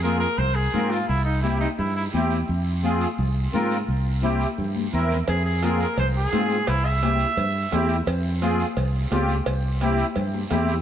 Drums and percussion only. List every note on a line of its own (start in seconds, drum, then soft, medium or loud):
0.04 high conga medium
0.04 short guiro medium
0.21 short guiro medium
0.39 high conga soft
0.39 low conga medium
0.39 long guiro medium
0.74 high conga medium
0.74 low conga medium
0.74 short guiro medium
0.92 short guiro medium
1.09 high conga soft
1.09 long guiro medium
1.44 high conga medium
1.44 short guiro medium
1.61 short guiro medium
1.79 high conga soft
1.79 low conga medium
1.79 long guiro medium
2.13 high conga medium
2.13 short guiro medium
2.31 short guiro medium
2.48 high conga soft
2.48 long guiro medium
2.83 high conga medium
2.83 short guiro medium
3.01 short guiro medium
3.18 high conga soft
3.18 low conga medium
3.18 long guiro medium
3.53 high conga medium
3.53 low conga medium
3.53 short guiro medium
3.71 short guiro medium
3.88 high conga soft
3.88 long guiro medium
4.23 high conga medium
4.23 short guiro medium
4.41 short guiro medium
4.58 high conga soft
4.58 low conga medium
4.58 long guiro medium
4.75 high conga medium
4.93 short guiro medium
4.99 low conga medium
5.11 low conga medium
5.11 short guiro medium
5.28 cowbell loud
5.28 high conga soft
5.28 long guiro medium
5.63 cowbell medium
5.63 high conga medium
5.63 short guiro medium
5.80 short guiro medium
5.98 cowbell medium
5.98 high conga soft
5.98 low conga medium
5.98 long guiro medium
6.32 cowbell medium
6.32 high conga medium
6.32 short guiro medium
6.50 short guiro medium
6.67 cowbell loud
6.67 high conga soft
6.67 long guiro medium
7.02 cowbell medium
7.02 high conga medium
7.02 short guiro medium
7.19 short guiro medium
7.36 cowbell medium
7.36 high conga soft
7.36 low conga medium
7.36 long guiro medium
7.72 cowbell medium
7.72 high conga medium
7.72 low timbale medium
7.72 short guiro medium
7.89 short guiro medium
8.07 cowbell loud
8.07 high conga soft
8.07 long guiro medium
8.42 cowbell medium
8.42 high conga medium
8.42 short guiro medium
8.60 short guiro medium
8.76 cowbell medium
8.76 high conga soft
8.76 low conga medium
8.76 long guiro medium
9.11 cowbell medium
9.11 high conga medium
9.11 low timbale medium
9.11 short guiro medium
9.29 short guiro medium
9.46 cowbell loud
9.46 high conga soft
9.46 long guiro medium
9.81 cowbell medium
9.81 high conga medium
9.81 short guiro medium
9.98 short guiro medium
10.16 cowbell medium
10.16 high conga soft
10.16 low conga medium
10.16 long guiro medium
10.34 high conga medium
10.51 cowbell medium
10.51 high conga loud
10.51 low timbale medium
10.51 short guiro medium
10.68 low conga medium
10.68 short guiro medium